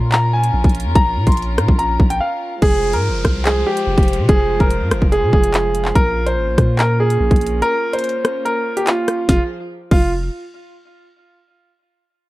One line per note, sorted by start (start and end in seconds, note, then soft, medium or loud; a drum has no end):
0.00 0.51 A#2 loud
0.00 2.59 C#4 medium
0.00 2.59 F4 medium
0.00 2.59 A#4 medium
0.12 0.31 A#5 medium
0.12 clap loud
0.12 closed hi-hat medium
0.33 0.92 G#5 medium
0.44 closed hi-hat medium
0.54 0.64 A#1 loud
0.64 0.87 A#1 loud
0.64 kick loud
0.64 closed hi-hat soft
0.69 closed hi-hat medium
0.75 closed hi-hat medium
0.80 closed hi-hat medium
0.85 0.95 F2 loud
0.95 1.18 A#1 loud
0.95 1.25 A#5 loud
0.95 kick loud
0.95 closed hi-hat medium
1.16 1.26 A#2 loud
1.27 1.59 A#1 loud
1.27 1.76 C6 medium
1.27 kick medium
1.27 closed hi-hat medium
1.32 closed hi-hat medium
1.37 closed hi-hat medium
1.42 closed hi-hat soft
1.58 1.68 A#2 loud
1.58 cross-stick loud
1.58 closed hi-hat medium
1.68 1.98 A#1 loud
1.68 kick medium
1.79 2.08 A#5 medium
1.79 closed hi-hat medium
2.00 2.20 A#1 loud
2.00 kick medium
2.10 2.19 G5 medium
2.10 closed hi-hat medium
2.21 2.60 F5 medium
2.62 2.95 F1 loud
2.62 5.92 F3 medium
2.62 5.92 G#3 medium
2.62 9.25 F4 medium
2.62 2.92 G#4 loud
2.62 5.92 C5 medium
2.62 kick loud
2.62 closed hi-hat medium
2.62 downlifter medium
2.93 3.11 G#2 loud
2.93 3.42 A#4 medium
2.93 closed hi-hat medium
3.09 3.24 F1 loud
3.25 3.65 C2 loud
3.25 kick medium
3.25 cross-stick loud
3.25 closed hi-hat medium
3.45 3.64 G#4 medium
3.45 clap loud
3.45 closed hi-hat medium
3.67 4.25 G4 medium
3.77 closed hi-hat medium
3.87 3.97 F1 loud
3.98 4.20 F1 loud
3.98 kick loud
3.98 closed hi-hat soft
4.03 closed hi-hat medium
4.08 closed hi-hat medium
4.13 closed hi-hat medium
4.18 4.28 C3 loud
4.29 4.59 F1 loud
4.29 4.58 G#4 loud
4.29 kick loud
4.29 closed hi-hat medium
4.60 4.82 F1 loud
4.60 5.09 A#4 medium
4.60 kick medium
4.60 closed hi-hat soft
4.70 closed hi-hat medium
4.81 4.93 G#2 loud
4.91 5.01 F1 loud
4.91 cross-stick loud
4.91 closed hi-hat medium
5.02 5.24 F1 loud
5.02 kick medium
5.12 5.30 G#4 medium
5.12 closed hi-hat medium
5.23 5.32 C3 loud
5.33 5.93 F1 loud
5.33 5.92 G#4 medium
5.33 kick medium
5.44 closed hi-hat medium
5.54 clap loud
5.54 closed hi-hat medium
5.75 closed hi-hat medium
5.85 clap medium
5.95 6.39 A#1 loud
5.95 9.25 A#3 medium
5.95 9.25 C#4 medium
5.95 6.25 A#4 loud
5.95 kick loud
5.95 closed hi-hat medium
6.26 6.76 C5 medium
6.26 closed hi-hat medium
6.37 6.49 G#1 loud
6.48 6.57 A#1 loud
6.58 7.18 A#2 loud
6.58 kick medium
6.58 cross-stick medium
6.58 closed hi-hat medium
6.79 6.97 A#4 medium
6.79 clap loud
6.79 closed hi-hat medium
7.00 7.58 G#4 medium
7.10 closed hi-hat medium
7.21 7.31 A#1 loud
7.31 7.62 A#1 loud
7.31 kick loud
7.31 closed hi-hat soft
7.36 closed hi-hat medium
7.41 closed hi-hat medium
7.47 closed hi-hat medium
7.62 7.92 A#4 loud
7.62 closed hi-hat medium
7.93 8.42 C5 medium
7.93 closed hi-hat medium
7.99 closed hi-hat medium
8.04 closed hi-hat medium
8.09 closed hi-hat soft
8.25 cross-stick loud
8.25 closed hi-hat medium
8.45 8.75 A#4 medium
8.45 closed hi-hat medium
8.77 8.86 G4 medium
8.77 closed hi-hat medium
8.87 9.26 F4 medium
8.87 clap loud
8.87 closed hi-hat medium
9.08 cross-stick medium
9.08 closed hi-hat medium
9.29 9.40 F1 loud
9.29 9.48 F3 medium
9.29 9.40 F4 medium
9.29 9.48 F4 medium
9.29 9.48 G#4 medium
9.29 9.48 C5 medium
9.29 kick loud
9.29 snare medium
9.91 10.30 F1 loud
9.91 10.11 F4 medium
9.91 kick loud
9.91 crash medium